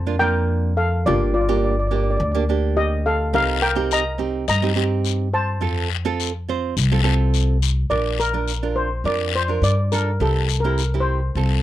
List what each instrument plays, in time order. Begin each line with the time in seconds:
Already playing: upright bass F2, steel pan C5 A5
0.06 nylon-string guitar A#3 D4 F4
0.19 nylon-string guitar A#3 D4 F4, steel pan A#4 G5
0.77 steel pan A4 F5
1.06 upright bass G1, nylon-string guitar A#3 D4 G4, steel pan F4 D5
1.34 steel pan F4 D5
1.41 steel pan D5
1.49 nylon-string guitar A#3 D4 G4, steel pan D5
1.58 steel pan D5
1.64 steel pan D5
1.71 steel pan D5
1.79 steel pan D5
1.87 nylon-string guitar A#3 D4, steel pan D5
1.92 nylon-string guitar G4, steel pan D5
2.03 steel pan D5
2.11 steel pan D5
2.17 upright bass D2, steel pan D5
2.23 steel pan D5
2.32 nylon-string guitar A#3 D4 G4, steel pan D5
2.49 nylon-string guitar A#3 D4 G4
2.77 steel pan G4 D#5
3.06 steel pan A4 F5
3.33 upright bass C2, nylon-string guitar C4 D#4 G4, steel pan A#4 F5, long guiro
3.62 steel pan A#4 G5
3.75 nylon-string guitar C4 D#4 G4
3.91 steel pan D#5 A#5, short guiro
4.18 nylon-string guitar C4 D#4 G4
4.48 upright bass G2, steel pan D#5 A#5, short guiro, long guiro
4.62 nylon-string guitar C4 D#4 G4
4.75 nylon-string guitar C4 D#4 G4
5.05 short guiro
5.34 steel pan C5 A5
5.61 upright bass F2, nylon-string guitar C4 F4 A4, long guiro
6.05 nylon-string guitar C4 F4 A4
6.20 short guiro
6.49 nylon-string guitar C4 F4 C5
6.77 upright bass C2, short guiro, long guiro
6.92 nylon-string guitar C4 F4 A4
7.04 nylon-string guitar C4 F4 A4
7.34 short guiro
7.62 short guiro
7.90 upright bass A#1, nylon-string guitar D4 F4 A#4, steel pan D5, long guiro
8.20 steel pan A#4, short guiro
8.33 nylon-string guitar D4 F4 A#4
8.48 short guiro
8.63 nylon-string guitar D4 F4 A#4
8.76 steel pan C5
9.04 upright bass F2, nylon-string guitar D4 F4 A#4, steel pan D5, long guiro
9.35 steel pan C5
9.48 nylon-string guitar D4 F4 A#4
9.62 upright bass G2, steel pan D5, short guiro
9.92 nylon-string guitar D4 F4 A4, steel pan A#4, short guiro
10.20 upright bass C2, nylon-string guitar C4 E4 G4, steel pan A4, long guiro
10.49 short guiro
10.60 nylon-string guitar C4, steel pan A#4
10.65 nylon-string guitar E4 G4
10.78 short guiro
10.94 nylon-string guitar C4 E4 G4
11.00 steel pan C5
11.35 upright bass C2, nylon-string guitar C4 F4 A4, long guiro